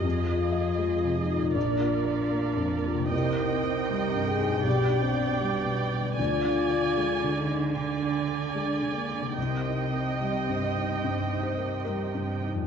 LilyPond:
<<
  \new Staff \with { instrumentName = "Viola section" } { \time 4/4 \key c \minor \tempo 4 = 76 << { ees''2 d''2 | g''1 | aes''2 aes''2 | g''2.~ g''8. r16 | } \\ { aes'2 bes'2 | ees''2 d''2 | d''2 d''2 | ees''2.~ ees''8. r16 | } >> }
  \new Staff \with { instrumentName = "French horn section" } { \time 4/4 \key c \minor f'4. ees'8 d'2 | bes'4. aes'8 g'8 c'8 b4 | f'4. ees'8 d'4. bes8 | c'2.~ c'8 r8 | }
  \new Staff \with { instrumentName = "Felt piano" } { \time 4/4 \key c \minor << { r1 | r1 | r1 | r2 r8 c''8 bes'4 | } \\ { \tuplet 3/2 { f,8 f'8 ees''8 aes8 c8 f'8 bes,,8 f'8 d''8 bes8 f,8 f'8 } | \tuplet 3/2 { c,8 ees'8 c''8 g8 g,8 ees'8 b,,8 d'8 d''8 g8 b,8 d'8 } | \tuplet 3/2 { d,8 d'8 d''8 aes8 d8 d'8 d8 d'8 d''8 aes8 d8 d'8 } | \tuplet 3/2 { c,8 ees'8 bes'8 g8 g,8 ees'8 g,8 ees'8 bes'8 g8 g,8 ees'8 } | } >> }
  \new Staff \with { instrumentName = "Harp" } { \time 4/4 \key c \minor <f, aes f' ees''>2 <bes, bes f' d''>2 | <c g ees' c''>2 <b, g d' d''>2 | <d aes d' d''>1 | <c g ees' bes'>1 | }
  \new Staff \with { instrumentName = "Cello section" } { \clef bass \time 4/4 \key c \minor f,2 bes,2 | c2 b,2 | d1 | c2.~ c8. r16 | }
>>